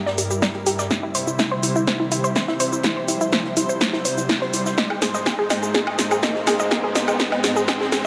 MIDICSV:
0, 0, Header, 1, 5, 480
1, 0, Start_track
1, 0, Tempo, 483871
1, 900, Time_signature, 4, 2, 24, 8
1, 8003, End_track
2, 0, Start_track
2, 0, Title_t, "Synth arpeggio sound"
2, 0, Program_c, 0, 84
2, 64, Note_on_c, 0, 74, 106
2, 105, Note_off_c, 0, 74, 0
2, 179, Note_on_c, 0, 67, 74
2, 254, Note_off_c, 0, 67, 0
2, 303, Note_on_c, 0, 67, 101
2, 373, Note_off_c, 0, 67, 0
2, 419, Note_on_c, 0, 74, 99
2, 464, Note_off_c, 0, 74, 0
2, 544, Note_on_c, 0, 67, 75
2, 613, Note_off_c, 0, 67, 0
2, 660, Note_on_c, 0, 67, 106
2, 734, Note_off_c, 0, 67, 0
2, 784, Note_on_c, 0, 74, 102
2, 826, Note_off_c, 0, 74, 0
2, 900, Note_on_c, 0, 64, 83
2, 974, Note_off_c, 0, 64, 0
2, 1024, Note_on_c, 0, 64, 100
2, 1093, Note_off_c, 0, 64, 0
2, 1140, Note_on_c, 0, 72, 98
2, 1184, Note_off_c, 0, 72, 0
2, 1263, Note_on_c, 0, 64, 78
2, 1333, Note_off_c, 0, 64, 0
2, 1379, Note_on_c, 0, 64, 100
2, 1454, Note_off_c, 0, 64, 0
2, 1503, Note_on_c, 0, 72, 97
2, 1545, Note_off_c, 0, 72, 0
2, 1619, Note_on_c, 0, 64, 76
2, 1694, Note_off_c, 0, 64, 0
2, 1743, Note_on_c, 0, 64, 109
2, 1813, Note_off_c, 0, 64, 0
2, 1859, Note_on_c, 0, 72, 98
2, 1904, Note_off_c, 0, 72, 0
2, 1983, Note_on_c, 0, 64, 79
2, 2053, Note_off_c, 0, 64, 0
2, 2100, Note_on_c, 0, 64, 97
2, 2174, Note_off_c, 0, 64, 0
2, 2223, Note_on_c, 0, 72, 98
2, 2265, Note_off_c, 0, 72, 0
2, 2340, Note_on_c, 0, 64, 85
2, 2414, Note_off_c, 0, 64, 0
2, 2463, Note_on_c, 0, 64, 99
2, 2533, Note_off_c, 0, 64, 0
2, 2579, Note_on_c, 0, 72, 105
2, 2624, Note_off_c, 0, 72, 0
2, 2703, Note_on_c, 0, 64, 78
2, 2773, Note_off_c, 0, 64, 0
2, 2819, Note_on_c, 0, 64, 104
2, 2894, Note_off_c, 0, 64, 0
2, 2944, Note_on_c, 0, 72, 105
2, 2985, Note_off_c, 0, 72, 0
2, 3060, Note_on_c, 0, 64, 77
2, 3134, Note_off_c, 0, 64, 0
2, 3184, Note_on_c, 0, 64, 104
2, 3253, Note_off_c, 0, 64, 0
2, 3300, Note_on_c, 0, 72, 101
2, 3344, Note_off_c, 0, 72, 0
2, 3424, Note_on_c, 0, 64, 75
2, 3493, Note_off_c, 0, 64, 0
2, 3540, Note_on_c, 0, 64, 102
2, 3614, Note_off_c, 0, 64, 0
2, 3664, Note_on_c, 0, 72, 103
2, 3705, Note_off_c, 0, 72, 0
2, 3780, Note_on_c, 0, 64, 82
2, 3854, Note_off_c, 0, 64, 0
2, 3903, Note_on_c, 0, 64, 103
2, 3973, Note_off_c, 0, 64, 0
2, 4019, Note_on_c, 0, 72, 101
2, 4064, Note_off_c, 0, 72, 0
2, 4144, Note_on_c, 0, 64, 73
2, 4213, Note_off_c, 0, 64, 0
2, 4260, Note_on_c, 0, 64, 102
2, 4334, Note_off_c, 0, 64, 0
2, 4383, Note_on_c, 0, 72, 105
2, 4425, Note_off_c, 0, 72, 0
2, 4500, Note_on_c, 0, 64, 78
2, 4574, Note_off_c, 0, 64, 0
2, 4624, Note_on_c, 0, 64, 101
2, 4693, Note_off_c, 0, 64, 0
2, 4739, Note_on_c, 0, 75, 105
2, 4784, Note_off_c, 0, 75, 0
2, 4864, Note_on_c, 0, 68, 78
2, 4933, Note_off_c, 0, 68, 0
2, 4980, Note_on_c, 0, 68, 104
2, 5054, Note_off_c, 0, 68, 0
2, 5103, Note_on_c, 0, 75, 103
2, 5145, Note_off_c, 0, 75, 0
2, 5220, Note_on_c, 0, 68, 82
2, 5294, Note_off_c, 0, 68, 0
2, 5344, Note_on_c, 0, 68, 101
2, 5413, Note_off_c, 0, 68, 0
2, 5459, Note_on_c, 0, 75, 106
2, 5504, Note_off_c, 0, 75, 0
2, 5583, Note_on_c, 0, 68, 81
2, 5653, Note_off_c, 0, 68, 0
2, 5699, Note_on_c, 0, 68, 102
2, 5774, Note_off_c, 0, 68, 0
2, 5824, Note_on_c, 0, 75, 103
2, 5865, Note_off_c, 0, 75, 0
2, 5940, Note_on_c, 0, 68, 72
2, 6014, Note_off_c, 0, 68, 0
2, 6064, Note_on_c, 0, 68, 100
2, 6133, Note_off_c, 0, 68, 0
2, 6180, Note_on_c, 0, 75, 103
2, 6224, Note_off_c, 0, 75, 0
2, 6304, Note_on_c, 0, 68, 78
2, 6373, Note_off_c, 0, 68, 0
2, 6419, Note_on_c, 0, 68, 106
2, 6494, Note_off_c, 0, 68, 0
2, 6544, Note_on_c, 0, 75, 105
2, 6585, Note_off_c, 0, 75, 0
2, 6659, Note_on_c, 0, 68, 84
2, 6734, Note_off_c, 0, 68, 0
2, 6783, Note_on_c, 0, 68, 100
2, 6853, Note_off_c, 0, 68, 0
2, 6899, Note_on_c, 0, 75, 101
2, 6944, Note_off_c, 0, 75, 0
2, 7023, Note_on_c, 0, 68, 78
2, 7093, Note_off_c, 0, 68, 0
2, 7139, Note_on_c, 0, 68, 99
2, 7214, Note_off_c, 0, 68, 0
2, 7263, Note_on_c, 0, 75, 97
2, 7305, Note_off_c, 0, 75, 0
2, 7379, Note_on_c, 0, 68, 78
2, 7454, Note_off_c, 0, 68, 0
2, 7504, Note_on_c, 0, 68, 107
2, 7573, Note_off_c, 0, 68, 0
2, 7620, Note_on_c, 0, 75, 103
2, 7664, Note_off_c, 0, 75, 0
2, 7743, Note_on_c, 0, 68, 77
2, 7813, Note_off_c, 0, 68, 0
2, 7859, Note_on_c, 0, 68, 97
2, 7934, Note_off_c, 0, 68, 0
2, 8003, End_track
3, 0, Start_track
3, 0, Title_t, "Analog synth pad"
3, 0, Program_c, 1, 89
3, 0, Note_on_c, 1, 43, 82
3, 0, Note_on_c, 1, 55, 79
3, 0, Note_on_c, 1, 64, 76
3, 0, Note_on_c, 1, 70, 87
3, 861, Note_off_c, 1, 43, 0
3, 861, Note_off_c, 1, 70, 0
3, 900, Note_on_c, 1, 48, 84
3, 900, Note_on_c, 1, 72, 93
3, 4700, Note_off_c, 1, 55, 0
3, 4700, Note_off_c, 1, 64, 0
3, 4702, Note_off_c, 1, 48, 0
3, 4739, Note_on_c, 1, 56, 77
3, 4739, Note_on_c, 1, 63, 76
3, 4740, Note_on_c, 1, 44, 83
3, 8003, Note_off_c, 1, 44, 0
3, 8003, Note_off_c, 1, 56, 0
3, 8003, Note_off_c, 1, 63, 0
3, 8003, Note_off_c, 1, 72, 0
3, 8003, End_track
4, 0, Start_track
4, 0, Title_t, "Riser"
4, 0, Program_c, 2, 103
4, 0, Note_on_c, 2, 60, 78
4, 8003, Note_off_c, 2, 60, 0
4, 8003, End_track
5, 0, Start_track
5, 0, Title_t, "Drums"
5, 67, Note_on_c, 9, 38, 45
5, 166, Note_off_c, 9, 38, 0
5, 179, Note_on_c, 9, 46, 108
5, 179, Note_on_c, 9, 82, 80
5, 181, Note_on_c, 9, 42, 62
5, 279, Note_off_c, 9, 46, 0
5, 279, Note_off_c, 9, 82, 0
5, 280, Note_off_c, 9, 42, 0
5, 298, Note_on_c, 9, 42, 46
5, 303, Note_on_c, 9, 82, 61
5, 397, Note_off_c, 9, 42, 0
5, 403, Note_off_c, 9, 82, 0
5, 418, Note_on_c, 9, 42, 81
5, 419, Note_on_c, 9, 36, 123
5, 419, Note_on_c, 9, 38, 56
5, 419, Note_on_c, 9, 82, 58
5, 420, Note_off_c, 9, 38, 0
5, 420, Note_on_c, 9, 38, 127
5, 517, Note_off_c, 9, 42, 0
5, 519, Note_off_c, 9, 36, 0
5, 519, Note_off_c, 9, 38, 0
5, 519, Note_off_c, 9, 82, 0
5, 535, Note_on_c, 9, 42, 43
5, 634, Note_off_c, 9, 42, 0
5, 659, Note_on_c, 9, 46, 103
5, 659, Note_on_c, 9, 82, 77
5, 664, Note_on_c, 9, 42, 72
5, 758, Note_off_c, 9, 46, 0
5, 758, Note_off_c, 9, 82, 0
5, 763, Note_off_c, 9, 42, 0
5, 780, Note_on_c, 9, 38, 49
5, 783, Note_on_c, 9, 82, 56
5, 879, Note_off_c, 9, 38, 0
5, 883, Note_off_c, 9, 82, 0
5, 897, Note_on_c, 9, 42, 84
5, 899, Note_on_c, 9, 38, 57
5, 899, Note_on_c, 9, 82, 57
5, 900, Note_on_c, 9, 36, 126
5, 996, Note_off_c, 9, 42, 0
5, 999, Note_off_c, 9, 36, 0
5, 999, Note_off_c, 9, 38, 0
5, 999, Note_off_c, 9, 82, 0
5, 1139, Note_on_c, 9, 46, 108
5, 1139, Note_on_c, 9, 82, 77
5, 1140, Note_on_c, 9, 42, 63
5, 1239, Note_off_c, 9, 46, 0
5, 1239, Note_off_c, 9, 82, 0
5, 1240, Note_off_c, 9, 42, 0
5, 1263, Note_on_c, 9, 82, 56
5, 1363, Note_off_c, 9, 82, 0
5, 1376, Note_on_c, 9, 38, 114
5, 1379, Note_on_c, 9, 42, 76
5, 1380, Note_off_c, 9, 38, 0
5, 1380, Note_on_c, 9, 36, 127
5, 1380, Note_on_c, 9, 38, 59
5, 1380, Note_on_c, 9, 82, 57
5, 1478, Note_off_c, 9, 42, 0
5, 1479, Note_off_c, 9, 36, 0
5, 1479, Note_off_c, 9, 38, 0
5, 1479, Note_off_c, 9, 82, 0
5, 1617, Note_on_c, 9, 42, 65
5, 1620, Note_on_c, 9, 46, 110
5, 1620, Note_on_c, 9, 82, 80
5, 1716, Note_off_c, 9, 42, 0
5, 1719, Note_off_c, 9, 46, 0
5, 1719, Note_off_c, 9, 82, 0
5, 1744, Note_on_c, 9, 82, 59
5, 1843, Note_off_c, 9, 82, 0
5, 1856, Note_on_c, 9, 42, 83
5, 1860, Note_on_c, 9, 36, 124
5, 1860, Note_on_c, 9, 38, 62
5, 1860, Note_on_c, 9, 82, 56
5, 1955, Note_off_c, 9, 42, 0
5, 1959, Note_off_c, 9, 36, 0
5, 1959, Note_off_c, 9, 38, 0
5, 1959, Note_off_c, 9, 82, 0
5, 2096, Note_on_c, 9, 42, 71
5, 2100, Note_on_c, 9, 46, 106
5, 2100, Note_on_c, 9, 82, 75
5, 2195, Note_off_c, 9, 42, 0
5, 2199, Note_off_c, 9, 46, 0
5, 2199, Note_off_c, 9, 82, 0
5, 2224, Note_on_c, 9, 82, 57
5, 2323, Note_off_c, 9, 82, 0
5, 2333, Note_on_c, 9, 42, 87
5, 2339, Note_on_c, 9, 38, 116
5, 2340, Note_off_c, 9, 38, 0
5, 2340, Note_on_c, 9, 36, 127
5, 2340, Note_on_c, 9, 38, 61
5, 2340, Note_on_c, 9, 82, 57
5, 2432, Note_off_c, 9, 42, 0
5, 2439, Note_off_c, 9, 36, 0
5, 2439, Note_off_c, 9, 38, 0
5, 2439, Note_off_c, 9, 82, 0
5, 2460, Note_on_c, 9, 38, 39
5, 2559, Note_off_c, 9, 38, 0
5, 2580, Note_on_c, 9, 42, 68
5, 2580, Note_on_c, 9, 46, 107
5, 2580, Note_on_c, 9, 82, 77
5, 2679, Note_off_c, 9, 42, 0
5, 2679, Note_off_c, 9, 46, 0
5, 2679, Note_off_c, 9, 82, 0
5, 2704, Note_on_c, 9, 82, 57
5, 2803, Note_off_c, 9, 82, 0
5, 2809, Note_on_c, 9, 42, 95
5, 2820, Note_on_c, 9, 36, 124
5, 2820, Note_on_c, 9, 38, 64
5, 2820, Note_on_c, 9, 82, 55
5, 2908, Note_off_c, 9, 42, 0
5, 2919, Note_off_c, 9, 36, 0
5, 2919, Note_off_c, 9, 38, 0
5, 2919, Note_off_c, 9, 82, 0
5, 3059, Note_on_c, 9, 46, 104
5, 3059, Note_on_c, 9, 82, 75
5, 3061, Note_on_c, 9, 42, 67
5, 3159, Note_off_c, 9, 46, 0
5, 3159, Note_off_c, 9, 82, 0
5, 3160, Note_off_c, 9, 42, 0
5, 3183, Note_on_c, 9, 82, 55
5, 3283, Note_off_c, 9, 82, 0
5, 3298, Note_on_c, 9, 42, 80
5, 3299, Note_on_c, 9, 38, 67
5, 3299, Note_on_c, 9, 82, 55
5, 3300, Note_on_c, 9, 36, 126
5, 3397, Note_off_c, 9, 42, 0
5, 3398, Note_off_c, 9, 38, 0
5, 3398, Note_off_c, 9, 82, 0
5, 3399, Note_off_c, 9, 36, 0
5, 3426, Note_on_c, 9, 42, 40
5, 3525, Note_off_c, 9, 42, 0
5, 3535, Note_on_c, 9, 42, 67
5, 3539, Note_on_c, 9, 46, 112
5, 3539, Note_on_c, 9, 82, 78
5, 3634, Note_off_c, 9, 42, 0
5, 3638, Note_off_c, 9, 46, 0
5, 3638, Note_off_c, 9, 82, 0
5, 3663, Note_on_c, 9, 82, 56
5, 3762, Note_off_c, 9, 82, 0
5, 3779, Note_on_c, 9, 38, 68
5, 3779, Note_on_c, 9, 42, 93
5, 3779, Note_on_c, 9, 82, 55
5, 3780, Note_on_c, 9, 36, 124
5, 3878, Note_off_c, 9, 42, 0
5, 3879, Note_off_c, 9, 36, 0
5, 3879, Note_off_c, 9, 38, 0
5, 3879, Note_off_c, 9, 82, 0
5, 3902, Note_on_c, 9, 38, 48
5, 4002, Note_off_c, 9, 38, 0
5, 4019, Note_on_c, 9, 46, 106
5, 4019, Note_on_c, 9, 82, 73
5, 4028, Note_on_c, 9, 42, 65
5, 4118, Note_off_c, 9, 46, 0
5, 4118, Note_off_c, 9, 82, 0
5, 4127, Note_off_c, 9, 42, 0
5, 4143, Note_on_c, 9, 82, 57
5, 4145, Note_on_c, 9, 42, 41
5, 4242, Note_off_c, 9, 82, 0
5, 4244, Note_off_c, 9, 42, 0
5, 4256, Note_on_c, 9, 38, 124
5, 4259, Note_off_c, 9, 38, 0
5, 4259, Note_on_c, 9, 38, 70
5, 4259, Note_on_c, 9, 82, 54
5, 4260, Note_on_c, 9, 36, 123
5, 4260, Note_on_c, 9, 42, 94
5, 4359, Note_off_c, 9, 36, 0
5, 4359, Note_off_c, 9, 38, 0
5, 4359, Note_off_c, 9, 42, 0
5, 4359, Note_off_c, 9, 82, 0
5, 4386, Note_on_c, 9, 42, 48
5, 4485, Note_off_c, 9, 42, 0
5, 4499, Note_on_c, 9, 46, 101
5, 4499, Note_on_c, 9, 82, 77
5, 4500, Note_on_c, 9, 42, 67
5, 4598, Note_off_c, 9, 46, 0
5, 4598, Note_off_c, 9, 82, 0
5, 4599, Note_off_c, 9, 42, 0
5, 4620, Note_on_c, 9, 38, 49
5, 4623, Note_on_c, 9, 82, 53
5, 4719, Note_off_c, 9, 38, 0
5, 4722, Note_off_c, 9, 82, 0
5, 4739, Note_on_c, 9, 38, 72
5, 4739, Note_on_c, 9, 82, 53
5, 4740, Note_on_c, 9, 36, 119
5, 4743, Note_on_c, 9, 42, 84
5, 4838, Note_off_c, 9, 38, 0
5, 4838, Note_off_c, 9, 82, 0
5, 4839, Note_off_c, 9, 36, 0
5, 4842, Note_off_c, 9, 42, 0
5, 4863, Note_on_c, 9, 77, 51
5, 4962, Note_off_c, 9, 77, 0
5, 4978, Note_on_c, 9, 42, 71
5, 4979, Note_on_c, 9, 38, 72
5, 4979, Note_on_c, 9, 46, 102
5, 4979, Note_on_c, 9, 82, 71
5, 5077, Note_off_c, 9, 42, 0
5, 5078, Note_off_c, 9, 38, 0
5, 5078, Note_off_c, 9, 46, 0
5, 5078, Note_off_c, 9, 82, 0
5, 5103, Note_on_c, 9, 82, 54
5, 5202, Note_off_c, 9, 82, 0
5, 5215, Note_on_c, 9, 42, 78
5, 5219, Note_on_c, 9, 38, 76
5, 5219, Note_on_c, 9, 77, 77
5, 5219, Note_on_c, 9, 82, 53
5, 5220, Note_off_c, 9, 38, 0
5, 5220, Note_on_c, 9, 36, 124
5, 5220, Note_on_c, 9, 38, 106
5, 5315, Note_off_c, 9, 42, 0
5, 5318, Note_off_c, 9, 77, 0
5, 5318, Note_off_c, 9, 82, 0
5, 5319, Note_off_c, 9, 36, 0
5, 5320, Note_off_c, 9, 38, 0
5, 5458, Note_on_c, 9, 42, 73
5, 5459, Note_on_c, 9, 38, 80
5, 5459, Note_on_c, 9, 46, 110
5, 5459, Note_on_c, 9, 77, 52
5, 5459, Note_on_c, 9, 82, 75
5, 5557, Note_off_c, 9, 42, 0
5, 5558, Note_off_c, 9, 38, 0
5, 5558, Note_off_c, 9, 46, 0
5, 5558, Note_off_c, 9, 77, 0
5, 5558, Note_off_c, 9, 82, 0
5, 5583, Note_on_c, 9, 82, 56
5, 5682, Note_off_c, 9, 82, 0
5, 5699, Note_on_c, 9, 36, 116
5, 5699, Note_on_c, 9, 38, 78
5, 5699, Note_on_c, 9, 82, 53
5, 5702, Note_on_c, 9, 42, 79
5, 5798, Note_off_c, 9, 38, 0
5, 5798, Note_off_c, 9, 82, 0
5, 5799, Note_off_c, 9, 36, 0
5, 5802, Note_off_c, 9, 42, 0
5, 5823, Note_on_c, 9, 77, 70
5, 5922, Note_off_c, 9, 77, 0
5, 5939, Note_on_c, 9, 38, 79
5, 5939, Note_on_c, 9, 46, 103
5, 5939, Note_on_c, 9, 82, 74
5, 5942, Note_on_c, 9, 42, 72
5, 6038, Note_off_c, 9, 38, 0
5, 6038, Note_off_c, 9, 46, 0
5, 6038, Note_off_c, 9, 82, 0
5, 6041, Note_off_c, 9, 42, 0
5, 6063, Note_on_c, 9, 77, 51
5, 6063, Note_on_c, 9, 82, 55
5, 6162, Note_off_c, 9, 77, 0
5, 6162, Note_off_c, 9, 82, 0
5, 6176, Note_on_c, 9, 38, 120
5, 6179, Note_off_c, 9, 38, 0
5, 6179, Note_on_c, 9, 36, 118
5, 6179, Note_on_c, 9, 38, 78
5, 6179, Note_on_c, 9, 82, 51
5, 6181, Note_on_c, 9, 42, 96
5, 6278, Note_off_c, 9, 38, 0
5, 6278, Note_off_c, 9, 82, 0
5, 6279, Note_off_c, 9, 36, 0
5, 6280, Note_off_c, 9, 42, 0
5, 6304, Note_on_c, 9, 38, 42
5, 6403, Note_off_c, 9, 38, 0
5, 6417, Note_on_c, 9, 42, 70
5, 6419, Note_on_c, 9, 38, 78
5, 6419, Note_on_c, 9, 46, 102
5, 6419, Note_on_c, 9, 77, 71
5, 6419, Note_on_c, 9, 82, 74
5, 6516, Note_off_c, 9, 42, 0
5, 6518, Note_off_c, 9, 38, 0
5, 6518, Note_off_c, 9, 46, 0
5, 6518, Note_off_c, 9, 77, 0
5, 6518, Note_off_c, 9, 82, 0
5, 6543, Note_on_c, 9, 82, 52
5, 6642, Note_off_c, 9, 82, 0
5, 6654, Note_on_c, 9, 42, 97
5, 6659, Note_on_c, 9, 36, 118
5, 6659, Note_on_c, 9, 38, 79
5, 6659, Note_on_c, 9, 77, 52
5, 6659, Note_on_c, 9, 82, 51
5, 6753, Note_off_c, 9, 42, 0
5, 6758, Note_off_c, 9, 38, 0
5, 6758, Note_off_c, 9, 77, 0
5, 6758, Note_off_c, 9, 82, 0
5, 6759, Note_off_c, 9, 36, 0
5, 6899, Note_on_c, 9, 38, 83
5, 6899, Note_on_c, 9, 46, 103
5, 6899, Note_on_c, 9, 82, 76
5, 6900, Note_on_c, 9, 42, 67
5, 6998, Note_off_c, 9, 38, 0
5, 6998, Note_off_c, 9, 46, 0
5, 6998, Note_off_c, 9, 82, 0
5, 6999, Note_off_c, 9, 42, 0
5, 7023, Note_on_c, 9, 77, 78
5, 7023, Note_on_c, 9, 82, 53
5, 7122, Note_off_c, 9, 77, 0
5, 7122, Note_off_c, 9, 82, 0
5, 7139, Note_on_c, 9, 36, 119
5, 7139, Note_on_c, 9, 38, 84
5, 7139, Note_on_c, 9, 82, 53
5, 7140, Note_on_c, 9, 42, 79
5, 7142, Note_off_c, 9, 38, 0
5, 7142, Note_on_c, 9, 38, 106
5, 7238, Note_off_c, 9, 82, 0
5, 7239, Note_off_c, 9, 36, 0
5, 7239, Note_off_c, 9, 42, 0
5, 7241, Note_off_c, 9, 38, 0
5, 7263, Note_on_c, 9, 42, 48
5, 7263, Note_on_c, 9, 77, 51
5, 7362, Note_off_c, 9, 42, 0
5, 7362, Note_off_c, 9, 77, 0
5, 7377, Note_on_c, 9, 42, 65
5, 7379, Note_on_c, 9, 38, 85
5, 7379, Note_on_c, 9, 46, 104
5, 7379, Note_on_c, 9, 82, 74
5, 7476, Note_off_c, 9, 42, 0
5, 7478, Note_off_c, 9, 38, 0
5, 7478, Note_off_c, 9, 46, 0
5, 7478, Note_off_c, 9, 82, 0
5, 7503, Note_on_c, 9, 82, 54
5, 7602, Note_off_c, 9, 82, 0
5, 7619, Note_on_c, 9, 36, 118
5, 7619, Note_on_c, 9, 38, 89
5, 7619, Note_on_c, 9, 77, 79
5, 7619, Note_on_c, 9, 82, 53
5, 7621, Note_on_c, 9, 42, 93
5, 7718, Note_off_c, 9, 38, 0
5, 7718, Note_off_c, 9, 77, 0
5, 7718, Note_off_c, 9, 82, 0
5, 7719, Note_off_c, 9, 36, 0
5, 7720, Note_off_c, 9, 42, 0
5, 7747, Note_on_c, 9, 38, 43
5, 7847, Note_off_c, 9, 38, 0
5, 7854, Note_on_c, 9, 42, 76
5, 7859, Note_on_c, 9, 38, 82
5, 7859, Note_on_c, 9, 46, 97
5, 7859, Note_on_c, 9, 77, 51
5, 7859, Note_on_c, 9, 82, 70
5, 7953, Note_off_c, 9, 42, 0
5, 7958, Note_off_c, 9, 38, 0
5, 7958, Note_off_c, 9, 46, 0
5, 7958, Note_off_c, 9, 77, 0
5, 7958, Note_off_c, 9, 82, 0
5, 8003, End_track
0, 0, End_of_file